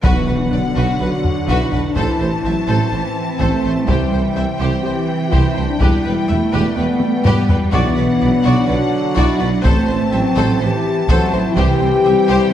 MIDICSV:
0, 0, Header, 1, 12, 480
1, 0, Start_track
1, 0, Tempo, 480000
1, 43, Time_signature, 4, 2, 24, 8
1, 12531, End_track
2, 0, Start_track
2, 0, Title_t, "Violin section"
2, 0, Program_c, 0, 48
2, 49, Note_on_c, 0, 78, 56
2, 1926, Note_off_c, 0, 78, 0
2, 1963, Note_on_c, 0, 81, 59
2, 3883, Note_off_c, 0, 81, 0
2, 3886, Note_on_c, 0, 79, 53
2, 7725, Note_off_c, 0, 79, 0
2, 7735, Note_on_c, 0, 78, 67
2, 9611, Note_off_c, 0, 78, 0
2, 9646, Note_on_c, 0, 81, 63
2, 11526, Note_off_c, 0, 81, 0
2, 11572, Note_on_c, 0, 79, 68
2, 12531, Note_off_c, 0, 79, 0
2, 12531, End_track
3, 0, Start_track
3, 0, Title_t, "Viola section"
3, 0, Program_c, 1, 48
3, 27, Note_on_c, 1, 71, 70
3, 258, Note_off_c, 1, 71, 0
3, 276, Note_on_c, 1, 71, 39
3, 356, Note_off_c, 1, 71, 0
3, 518, Note_on_c, 1, 71, 44
3, 598, Note_off_c, 1, 71, 0
3, 756, Note_on_c, 1, 71, 52
3, 982, Note_off_c, 1, 71, 0
3, 995, Note_on_c, 1, 71, 47
3, 1075, Note_off_c, 1, 71, 0
3, 1481, Note_on_c, 1, 71, 55
3, 1705, Note_off_c, 1, 71, 0
3, 1723, Note_on_c, 1, 71, 52
3, 1803, Note_off_c, 1, 71, 0
3, 1958, Note_on_c, 1, 72, 60
3, 2184, Note_off_c, 1, 72, 0
3, 2200, Note_on_c, 1, 72, 38
3, 2280, Note_off_c, 1, 72, 0
3, 2435, Note_on_c, 1, 72, 40
3, 2515, Note_off_c, 1, 72, 0
3, 2677, Note_on_c, 1, 72, 54
3, 2897, Note_off_c, 1, 72, 0
3, 2909, Note_on_c, 1, 72, 39
3, 2989, Note_off_c, 1, 72, 0
3, 3402, Note_on_c, 1, 72, 53
3, 3626, Note_off_c, 1, 72, 0
3, 3644, Note_on_c, 1, 72, 48
3, 3724, Note_off_c, 1, 72, 0
3, 3881, Note_on_c, 1, 72, 56
3, 4105, Note_off_c, 1, 72, 0
3, 4122, Note_on_c, 1, 72, 39
3, 4202, Note_off_c, 1, 72, 0
3, 4356, Note_on_c, 1, 72, 45
3, 4436, Note_off_c, 1, 72, 0
3, 4595, Note_on_c, 1, 72, 54
3, 4822, Note_off_c, 1, 72, 0
3, 4832, Note_on_c, 1, 72, 45
3, 4912, Note_off_c, 1, 72, 0
3, 5316, Note_on_c, 1, 72, 62
3, 5542, Note_off_c, 1, 72, 0
3, 5563, Note_on_c, 1, 72, 55
3, 5643, Note_off_c, 1, 72, 0
3, 5800, Note_on_c, 1, 71, 57
3, 6024, Note_off_c, 1, 71, 0
3, 6049, Note_on_c, 1, 71, 43
3, 6129, Note_off_c, 1, 71, 0
3, 6286, Note_on_c, 1, 71, 40
3, 6366, Note_off_c, 1, 71, 0
3, 6525, Note_on_c, 1, 71, 62
3, 6748, Note_off_c, 1, 71, 0
3, 6766, Note_on_c, 1, 71, 44
3, 6846, Note_off_c, 1, 71, 0
3, 7247, Note_on_c, 1, 71, 65
3, 7468, Note_off_c, 1, 71, 0
3, 7495, Note_on_c, 1, 71, 55
3, 7575, Note_off_c, 1, 71, 0
3, 7726, Note_on_c, 1, 74, 77
3, 7948, Note_off_c, 1, 74, 0
3, 7968, Note_on_c, 1, 74, 44
3, 8048, Note_off_c, 1, 74, 0
3, 8209, Note_on_c, 1, 74, 52
3, 8289, Note_off_c, 1, 74, 0
3, 8452, Note_on_c, 1, 74, 64
3, 8671, Note_off_c, 1, 74, 0
3, 8686, Note_on_c, 1, 74, 47
3, 8766, Note_off_c, 1, 74, 0
3, 9173, Note_on_c, 1, 74, 74
3, 9392, Note_off_c, 1, 74, 0
3, 9407, Note_on_c, 1, 74, 56
3, 9487, Note_off_c, 1, 74, 0
3, 9640, Note_on_c, 1, 72, 78
3, 9865, Note_off_c, 1, 72, 0
3, 9885, Note_on_c, 1, 72, 46
3, 9965, Note_off_c, 1, 72, 0
3, 10128, Note_on_c, 1, 72, 45
3, 10208, Note_off_c, 1, 72, 0
3, 10370, Note_on_c, 1, 72, 62
3, 10590, Note_off_c, 1, 72, 0
3, 10603, Note_on_c, 1, 72, 49
3, 10683, Note_off_c, 1, 72, 0
3, 11086, Note_on_c, 1, 72, 72
3, 11308, Note_off_c, 1, 72, 0
3, 11328, Note_on_c, 1, 72, 57
3, 11408, Note_off_c, 1, 72, 0
3, 11567, Note_on_c, 1, 72, 75
3, 11788, Note_off_c, 1, 72, 0
3, 11799, Note_on_c, 1, 72, 43
3, 11879, Note_off_c, 1, 72, 0
3, 12045, Note_on_c, 1, 72, 49
3, 12125, Note_off_c, 1, 72, 0
3, 12293, Note_on_c, 1, 72, 71
3, 12512, Note_off_c, 1, 72, 0
3, 12531, End_track
4, 0, Start_track
4, 0, Title_t, "Violin section"
4, 0, Program_c, 2, 48
4, 40, Note_on_c, 2, 66, 66
4, 265, Note_off_c, 2, 66, 0
4, 279, Note_on_c, 2, 71, 36
4, 359, Note_off_c, 2, 71, 0
4, 526, Note_on_c, 2, 74, 45
4, 606, Note_off_c, 2, 74, 0
4, 766, Note_on_c, 2, 66, 55
4, 988, Note_off_c, 2, 66, 0
4, 1012, Note_on_c, 2, 71, 44
4, 1092, Note_off_c, 2, 71, 0
4, 1493, Note_on_c, 2, 66, 66
4, 1712, Note_off_c, 2, 66, 0
4, 1730, Note_on_c, 2, 71, 44
4, 1810, Note_off_c, 2, 71, 0
4, 1967, Note_on_c, 2, 69, 59
4, 2188, Note_off_c, 2, 69, 0
4, 2213, Note_on_c, 2, 72, 43
4, 2293, Note_off_c, 2, 72, 0
4, 2451, Note_on_c, 2, 76, 46
4, 2531, Note_off_c, 2, 76, 0
4, 2680, Note_on_c, 2, 69, 52
4, 2905, Note_off_c, 2, 69, 0
4, 2922, Note_on_c, 2, 72, 42
4, 3002, Note_off_c, 2, 72, 0
4, 3400, Note_on_c, 2, 69, 53
4, 3624, Note_off_c, 2, 69, 0
4, 3635, Note_on_c, 2, 72, 53
4, 3715, Note_off_c, 2, 72, 0
4, 3876, Note_on_c, 2, 67, 52
4, 4102, Note_off_c, 2, 67, 0
4, 4122, Note_on_c, 2, 72, 42
4, 4202, Note_off_c, 2, 72, 0
4, 4360, Note_on_c, 2, 76, 41
4, 4440, Note_off_c, 2, 76, 0
4, 4606, Note_on_c, 2, 67, 59
4, 4828, Note_off_c, 2, 67, 0
4, 4854, Note_on_c, 2, 72, 48
4, 4934, Note_off_c, 2, 72, 0
4, 5318, Note_on_c, 2, 67, 57
4, 5543, Note_off_c, 2, 67, 0
4, 5559, Note_on_c, 2, 72, 44
4, 5639, Note_off_c, 2, 72, 0
4, 5800, Note_on_c, 2, 67, 55
4, 6025, Note_off_c, 2, 67, 0
4, 6040, Note_on_c, 2, 71, 51
4, 6120, Note_off_c, 2, 71, 0
4, 6283, Note_on_c, 2, 76, 48
4, 6363, Note_off_c, 2, 76, 0
4, 6531, Note_on_c, 2, 67, 57
4, 6751, Note_off_c, 2, 67, 0
4, 6771, Note_on_c, 2, 71, 47
4, 6851, Note_off_c, 2, 71, 0
4, 7248, Note_on_c, 2, 67, 76
4, 7469, Note_off_c, 2, 67, 0
4, 7488, Note_on_c, 2, 71, 55
4, 7568, Note_off_c, 2, 71, 0
4, 7721, Note_on_c, 2, 66, 64
4, 7945, Note_off_c, 2, 66, 0
4, 7960, Note_on_c, 2, 71, 46
4, 8040, Note_off_c, 2, 71, 0
4, 8204, Note_on_c, 2, 74, 41
4, 8284, Note_off_c, 2, 74, 0
4, 8442, Note_on_c, 2, 66, 63
4, 8666, Note_off_c, 2, 66, 0
4, 8673, Note_on_c, 2, 71, 54
4, 8753, Note_off_c, 2, 71, 0
4, 9162, Note_on_c, 2, 66, 74
4, 9386, Note_off_c, 2, 66, 0
4, 9395, Note_on_c, 2, 71, 55
4, 9475, Note_off_c, 2, 71, 0
4, 9640, Note_on_c, 2, 69, 67
4, 9864, Note_off_c, 2, 69, 0
4, 9870, Note_on_c, 2, 72, 45
4, 9950, Note_off_c, 2, 72, 0
4, 10114, Note_on_c, 2, 76, 50
4, 10194, Note_off_c, 2, 76, 0
4, 10362, Note_on_c, 2, 69, 75
4, 10586, Note_off_c, 2, 69, 0
4, 10602, Note_on_c, 2, 72, 60
4, 10682, Note_off_c, 2, 72, 0
4, 11091, Note_on_c, 2, 69, 81
4, 11311, Note_off_c, 2, 69, 0
4, 11326, Note_on_c, 2, 72, 51
4, 11406, Note_off_c, 2, 72, 0
4, 11565, Note_on_c, 2, 67, 67
4, 11787, Note_off_c, 2, 67, 0
4, 11816, Note_on_c, 2, 72, 44
4, 11896, Note_off_c, 2, 72, 0
4, 12046, Note_on_c, 2, 76, 47
4, 12126, Note_off_c, 2, 76, 0
4, 12281, Note_on_c, 2, 67, 74
4, 12505, Note_off_c, 2, 67, 0
4, 12531, End_track
5, 0, Start_track
5, 0, Title_t, "French horn section"
5, 0, Program_c, 3, 60
5, 34, Note_on_c, 3, 59, 70
5, 959, Note_off_c, 3, 59, 0
5, 1006, Note_on_c, 3, 66, 82
5, 1475, Note_off_c, 3, 66, 0
5, 1487, Note_on_c, 3, 64, 73
5, 1725, Note_off_c, 3, 64, 0
5, 1725, Note_on_c, 3, 62, 59
5, 1835, Note_off_c, 3, 62, 0
5, 1847, Note_on_c, 3, 62, 65
5, 1963, Note_off_c, 3, 62, 0
5, 1969, Note_on_c, 3, 64, 74
5, 2926, Note_off_c, 3, 64, 0
5, 2930, Note_on_c, 3, 60, 75
5, 3861, Note_off_c, 3, 60, 0
5, 3873, Note_on_c, 3, 60, 76
5, 4819, Note_off_c, 3, 60, 0
5, 4832, Note_on_c, 3, 67, 84
5, 5309, Note_on_c, 3, 64, 79
5, 5318, Note_off_c, 3, 67, 0
5, 5556, Note_off_c, 3, 64, 0
5, 5557, Note_on_c, 3, 62, 69
5, 5674, Note_off_c, 3, 62, 0
5, 5686, Note_on_c, 3, 62, 71
5, 5797, Note_on_c, 3, 64, 78
5, 5802, Note_off_c, 3, 62, 0
5, 6760, Note_off_c, 3, 64, 0
5, 6766, Note_on_c, 3, 59, 83
5, 7547, Note_off_c, 3, 59, 0
5, 7717, Note_on_c, 3, 59, 89
5, 8661, Note_off_c, 3, 59, 0
5, 8676, Note_on_c, 3, 66, 97
5, 9150, Note_off_c, 3, 66, 0
5, 9158, Note_on_c, 3, 64, 86
5, 9398, Note_on_c, 3, 62, 78
5, 9401, Note_off_c, 3, 64, 0
5, 9520, Note_off_c, 3, 62, 0
5, 9532, Note_on_c, 3, 62, 73
5, 9645, Note_off_c, 3, 62, 0
5, 9646, Note_on_c, 3, 60, 97
5, 10585, Note_off_c, 3, 60, 0
5, 10609, Note_on_c, 3, 67, 94
5, 11076, Note_off_c, 3, 67, 0
5, 11097, Note_on_c, 3, 66, 81
5, 11330, Note_off_c, 3, 66, 0
5, 11338, Note_on_c, 3, 64, 70
5, 11446, Note_off_c, 3, 64, 0
5, 11458, Note_on_c, 3, 64, 80
5, 11554, Note_on_c, 3, 67, 111
5, 11569, Note_off_c, 3, 64, 0
5, 12519, Note_off_c, 3, 67, 0
5, 12531, End_track
6, 0, Start_track
6, 0, Title_t, "Trombone section"
6, 0, Program_c, 4, 61
6, 38, Note_on_c, 4, 62, 58
6, 45, Note_on_c, 4, 54, 57
6, 1920, Note_off_c, 4, 62, 0
6, 1924, Note_off_c, 4, 54, 0
6, 1956, Note_on_c, 4, 60, 60
6, 1959, Note_on_c, 4, 52, 56
6, 5760, Note_off_c, 4, 60, 0
6, 5761, Note_off_c, 4, 52, 0
6, 5804, Note_on_c, 4, 55, 61
6, 5807, Note_on_c, 4, 59, 59
6, 7541, Note_off_c, 4, 55, 0
6, 7541, Note_off_c, 4, 59, 0
6, 7711, Note_on_c, 4, 54, 65
6, 7711, Note_on_c, 4, 62, 71
6, 9597, Note_off_c, 4, 54, 0
6, 9597, Note_off_c, 4, 62, 0
6, 9648, Note_on_c, 4, 60, 66
6, 9652, Note_on_c, 4, 52, 75
6, 12531, Note_off_c, 4, 52, 0
6, 12531, Note_off_c, 4, 60, 0
6, 12531, End_track
7, 0, Start_track
7, 0, Title_t, "Cello section"
7, 0, Program_c, 5, 48
7, 35, Note_on_c, 5, 52, 54
7, 485, Note_off_c, 5, 52, 0
7, 517, Note_on_c, 5, 50, 51
7, 1960, Note_off_c, 5, 50, 0
7, 1962, Note_on_c, 5, 52, 53
7, 2433, Note_off_c, 5, 52, 0
7, 2444, Note_on_c, 5, 54, 59
7, 2924, Note_off_c, 5, 54, 0
7, 2925, Note_on_c, 5, 52, 56
7, 3394, Note_off_c, 5, 52, 0
7, 3408, Note_on_c, 5, 57, 66
7, 3886, Note_off_c, 5, 57, 0
7, 3887, Note_on_c, 5, 55, 57
7, 4845, Note_off_c, 5, 55, 0
7, 4854, Note_on_c, 5, 52, 62
7, 5790, Note_off_c, 5, 52, 0
7, 5813, Note_on_c, 5, 55, 60
7, 6279, Note_off_c, 5, 55, 0
7, 6284, Note_on_c, 5, 57, 62
7, 7241, Note_on_c, 5, 55, 68
7, 7244, Note_off_c, 5, 57, 0
7, 7722, Note_off_c, 5, 55, 0
7, 7724, Note_on_c, 5, 52, 71
7, 8684, Note_off_c, 5, 52, 0
7, 8692, Note_on_c, 5, 50, 59
7, 9167, Note_off_c, 5, 50, 0
7, 9171, Note_on_c, 5, 54, 64
7, 9647, Note_off_c, 5, 54, 0
7, 9648, Note_on_c, 5, 57, 74
7, 10116, Note_off_c, 5, 57, 0
7, 10127, Note_on_c, 5, 54, 78
7, 10605, Note_off_c, 5, 54, 0
7, 10607, Note_on_c, 5, 52, 65
7, 11081, Note_on_c, 5, 54, 78
7, 11085, Note_off_c, 5, 52, 0
7, 11552, Note_off_c, 5, 54, 0
7, 11569, Note_on_c, 5, 52, 66
7, 12046, Note_off_c, 5, 52, 0
7, 12051, Note_on_c, 5, 55, 76
7, 12531, Note_off_c, 5, 55, 0
7, 12531, End_track
8, 0, Start_track
8, 0, Title_t, "Timpani"
8, 0, Program_c, 6, 47
8, 33, Note_on_c, 6, 47, 64
8, 718, Note_off_c, 6, 47, 0
8, 12531, End_track
9, 0, Start_track
9, 0, Title_t, "Double bass section"
9, 0, Program_c, 7, 48
9, 37, Note_on_c, 7, 35, 63
9, 117, Note_off_c, 7, 35, 0
9, 274, Note_on_c, 7, 35, 50
9, 354, Note_off_c, 7, 35, 0
9, 513, Note_on_c, 7, 35, 47
9, 593, Note_off_c, 7, 35, 0
9, 758, Note_on_c, 7, 35, 61
9, 838, Note_off_c, 7, 35, 0
9, 997, Note_on_c, 7, 35, 51
9, 1077, Note_off_c, 7, 35, 0
9, 1479, Note_on_c, 7, 35, 65
9, 1559, Note_off_c, 7, 35, 0
9, 1727, Note_on_c, 7, 35, 42
9, 1807, Note_off_c, 7, 35, 0
9, 1967, Note_on_c, 7, 33, 65
9, 2047, Note_off_c, 7, 33, 0
9, 2203, Note_on_c, 7, 33, 44
9, 2283, Note_off_c, 7, 33, 0
9, 2444, Note_on_c, 7, 33, 45
9, 2524, Note_off_c, 7, 33, 0
9, 2675, Note_on_c, 7, 33, 67
9, 2755, Note_off_c, 7, 33, 0
9, 2922, Note_on_c, 7, 33, 44
9, 3002, Note_off_c, 7, 33, 0
9, 3404, Note_on_c, 7, 33, 62
9, 3484, Note_off_c, 7, 33, 0
9, 3643, Note_on_c, 7, 33, 42
9, 3723, Note_off_c, 7, 33, 0
9, 3883, Note_on_c, 7, 36, 62
9, 3963, Note_off_c, 7, 36, 0
9, 4124, Note_on_c, 7, 36, 48
9, 4204, Note_off_c, 7, 36, 0
9, 4357, Note_on_c, 7, 36, 49
9, 4437, Note_off_c, 7, 36, 0
9, 4596, Note_on_c, 7, 36, 65
9, 4676, Note_off_c, 7, 36, 0
9, 4848, Note_on_c, 7, 36, 48
9, 4928, Note_off_c, 7, 36, 0
9, 5322, Note_on_c, 7, 36, 65
9, 5402, Note_off_c, 7, 36, 0
9, 5571, Note_on_c, 7, 36, 49
9, 5651, Note_off_c, 7, 36, 0
9, 5811, Note_on_c, 7, 40, 67
9, 5891, Note_off_c, 7, 40, 0
9, 6052, Note_on_c, 7, 40, 50
9, 6132, Note_off_c, 7, 40, 0
9, 6294, Note_on_c, 7, 40, 52
9, 6374, Note_off_c, 7, 40, 0
9, 6529, Note_on_c, 7, 40, 71
9, 6609, Note_off_c, 7, 40, 0
9, 6770, Note_on_c, 7, 40, 52
9, 6850, Note_off_c, 7, 40, 0
9, 7252, Note_on_c, 7, 40, 72
9, 7332, Note_off_c, 7, 40, 0
9, 7496, Note_on_c, 7, 40, 48
9, 7576, Note_off_c, 7, 40, 0
9, 7731, Note_on_c, 7, 35, 73
9, 7811, Note_off_c, 7, 35, 0
9, 7976, Note_on_c, 7, 35, 55
9, 8056, Note_off_c, 7, 35, 0
9, 8214, Note_on_c, 7, 35, 51
9, 8294, Note_off_c, 7, 35, 0
9, 8451, Note_on_c, 7, 35, 78
9, 8531, Note_off_c, 7, 35, 0
9, 8696, Note_on_c, 7, 35, 58
9, 8776, Note_off_c, 7, 35, 0
9, 9170, Note_on_c, 7, 35, 79
9, 9250, Note_off_c, 7, 35, 0
9, 9405, Note_on_c, 7, 35, 50
9, 9485, Note_off_c, 7, 35, 0
9, 9649, Note_on_c, 7, 33, 75
9, 9729, Note_off_c, 7, 33, 0
9, 9889, Note_on_c, 7, 33, 61
9, 9969, Note_off_c, 7, 33, 0
9, 10126, Note_on_c, 7, 33, 53
9, 10206, Note_off_c, 7, 33, 0
9, 10368, Note_on_c, 7, 33, 88
9, 10448, Note_off_c, 7, 33, 0
9, 10614, Note_on_c, 7, 33, 60
9, 10694, Note_off_c, 7, 33, 0
9, 11089, Note_on_c, 7, 33, 82
9, 11169, Note_off_c, 7, 33, 0
9, 11335, Note_on_c, 7, 33, 51
9, 11415, Note_off_c, 7, 33, 0
9, 11568, Note_on_c, 7, 36, 81
9, 11648, Note_off_c, 7, 36, 0
9, 11808, Note_on_c, 7, 36, 60
9, 11888, Note_off_c, 7, 36, 0
9, 12055, Note_on_c, 7, 36, 59
9, 12135, Note_off_c, 7, 36, 0
9, 12290, Note_on_c, 7, 36, 75
9, 12370, Note_off_c, 7, 36, 0
9, 12531, End_track
10, 0, Start_track
10, 0, Title_t, "Tuba"
10, 0, Program_c, 8, 58
10, 43, Note_on_c, 8, 35, 66
10, 139, Note_off_c, 8, 35, 0
10, 287, Note_on_c, 8, 35, 45
10, 382, Note_off_c, 8, 35, 0
10, 522, Note_on_c, 8, 35, 47
10, 618, Note_off_c, 8, 35, 0
10, 761, Note_on_c, 8, 35, 63
10, 858, Note_off_c, 8, 35, 0
10, 1001, Note_on_c, 8, 35, 41
10, 1098, Note_off_c, 8, 35, 0
10, 1482, Note_on_c, 8, 35, 71
10, 1578, Note_off_c, 8, 35, 0
10, 1725, Note_on_c, 8, 35, 43
10, 1820, Note_off_c, 8, 35, 0
10, 1968, Note_on_c, 8, 33, 63
10, 2063, Note_off_c, 8, 33, 0
10, 2212, Note_on_c, 8, 33, 44
10, 2306, Note_off_c, 8, 33, 0
10, 2448, Note_on_c, 8, 33, 46
10, 2543, Note_off_c, 8, 33, 0
10, 2689, Note_on_c, 8, 33, 63
10, 2784, Note_off_c, 8, 33, 0
10, 2931, Note_on_c, 8, 33, 41
10, 3026, Note_off_c, 8, 33, 0
10, 3405, Note_on_c, 8, 33, 70
10, 3501, Note_off_c, 8, 33, 0
10, 3646, Note_on_c, 8, 33, 38
10, 3742, Note_off_c, 8, 33, 0
10, 3881, Note_on_c, 8, 36, 62
10, 3977, Note_off_c, 8, 36, 0
10, 4126, Note_on_c, 8, 36, 43
10, 4221, Note_off_c, 8, 36, 0
10, 4367, Note_on_c, 8, 36, 49
10, 4462, Note_off_c, 8, 36, 0
10, 4612, Note_on_c, 8, 36, 68
10, 4706, Note_off_c, 8, 36, 0
10, 4850, Note_on_c, 8, 36, 47
10, 4945, Note_off_c, 8, 36, 0
10, 5329, Note_on_c, 8, 36, 66
10, 5424, Note_off_c, 8, 36, 0
10, 5572, Note_on_c, 8, 36, 44
10, 5666, Note_off_c, 8, 36, 0
10, 5819, Note_on_c, 8, 28, 59
10, 5912, Note_off_c, 8, 28, 0
10, 6059, Note_on_c, 8, 28, 43
10, 6152, Note_off_c, 8, 28, 0
10, 6290, Note_on_c, 8, 28, 50
10, 6384, Note_off_c, 8, 28, 0
10, 6536, Note_on_c, 8, 28, 73
10, 6629, Note_off_c, 8, 28, 0
10, 6773, Note_on_c, 8, 28, 48
10, 6867, Note_off_c, 8, 28, 0
10, 7252, Note_on_c, 8, 28, 72
10, 7346, Note_off_c, 8, 28, 0
10, 7489, Note_on_c, 8, 28, 45
10, 7584, Note_off_c, 8, 28, 0
10, 7738, Note_on_c, 8, 35, 72
10, 7831, Note_off_c, 8, 35, 0
10, 7971, Note_on_c, 8, 35, 54
10, 8066, Note_off_c, 8, 35, 0
10, 8209, Note_on_c, 8, 35, 55
10, 8304, Note_off_c, 8, 35, 0
10, 8455, Note_on_c, 8, 35, 76
10, 8549, Note_off_c, 8, 35, 0
10, 8686, Note_on_c, 8, 35, 47
10, 8782, Note_off_c, 8, 35, 0
10, 9168, Note_on_c, 8, 35, 73
10, 9263, Note_off_c, 8, 35, 0
10, 9409, Note_on_c, 8, 35, 53
10, 9504, Note_off_c, 8, 35, 0
10, 9650, Note_on_c, 8, 33, 72
10, 9745, Note_off_c, 8, 33, 0
10, 9882, Note_on_c, 8, 33, 52
10, 9978, Note_off_c, 8, 33, 0
10, 10124, Note_on_c, 8, 33, 56
10, 10220, Note_off_c, 8, 33, 0
10, 10370, Note_on_c, 8, 33, 77
10, 10464, Note_off_c, 8, 33, 0
10, 10610, Note_on_c, 8, 33, 50
10, 10705, Note_off_c, 8, 33, 0
10, 11090, Note_on_c, 8, 33, 87
10, 11185, Note_off_c, 8, 33, 0
10, 11339, Note_on_c, 8, 33, 53
10, 11432, Note_off_c, 8, 33, 0
10, 11569, Note_on_c, 8, 36, 76
10, 11664, Note_off_c, 8, 36, 0
10, 11811, Note_on_c, 8, 36, 53
10, 11906, Note_off_c, 8, 36, 0
10, 12051, Note_on_c, 8, 36, 55
10, 12145, Note_off_c, 8, 36, 0
10, 12290, Note_on_c, 8, 36, 75
10, 12385, Note_off_c, 8, 36, 0
10, 12531, End_track
11, 0, Start_track
11, 0, Title_t, "Impact"
11, 0, Program_c, 10, 103
11, 36, Note_on_c, 10, 60, 60
11, 1960, Note_off_c, 10, 60, 0
11, 12531, End_track
12, 0, Start_track
12, 0, Title_t, "Taiko and cinematic ensemble drums"
12, 39, Note_on_c, 9, 41, 83
12, 139, Note_off_c, 9, 41, 0
12, 1243, Note_on_c, 9, 43, 49
12, 1343, Note_off_c, 9, 43, 0
12, 1482, Note_on_c, 9, 41, 74
12, 1582, Note_off_c, 9, 41, 0
12, 1724, Note_on_c, 9, 43, 41
12, 1824, Note_off_c, 9, 43, 0
12, 1959, Note_on_c, 9, 41, 76
12, 2059, Note_off_c, 9, 41, 0
12, 3402, Note_on_c, 9, 41, 70
12, 3502, Note_off_c, 9, 41, 0
12, 3885, Note_on_c, 9, 41, 85
12, 3985, Note_off_c, 9, 41, 0
12, 5327, Note_on_c, 9, 41, 72
12, 5427, Note_off_c, 9, 41, 0
12, 5804, Note_on_c, 9, 41, 86
12, 5904, Note_off_c, 9, 41, 0
12, 7012, Note_on_c, 9, 48, 72
12, 7112, Note_off_c, 9, 48, 0
12, 7250, Note_on_c, 9, 45, 77
12, 7350, Note_off_c, 9, 45, 0
12, 7490, Note_on_c, 9, 43, 84
12, 7590, Note_off_c, 9, 43, 0
12, 7730, Note_on_c, 9, 41, 91
12, 7830, Note_off_c, 9, 41, 0
12, 9171, Note_on_c, 9, 41, 72
12, 9271, Note_off_c, 9, 41, 0
12, 9650, Note_on_c, 9, 41, 84
12, 9750, Note_off_c, 9, 41, 0
12, 11087, Note_on_c, 9, 41, 76
12, 11187, Note_off_c, 9, 41, 0
12, 11565, Note_on_c, 9, 41, 85
12, 11665, Note_off_c, 9, 41, 0
12, 12531, End_track
0, 0, End_of_file